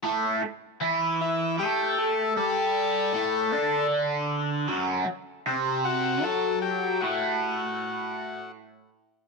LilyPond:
<<
  \new Staff \with { instrumentName = "Transistor combo organ" } { \time 6/8 \key a \dorian \tempo 4. = 52 r4. e'8 g'8 a'8 | a'2 r4 | r4. fis'8 a'8 g'8 | fis'2 r4 | }
  \new Staff \with { instrumentName = "Overdriven electric guitar" } { \clef bass \time 6/8 \key a \dorian <a, a>8 r8 <e e'>4 <a a'>4 | <g g'>4 <a, a>8 <d d'>4. | <fis, fis>8 r8 <c c'>4 <fis fis'>4 | <a, a>2. | }
>>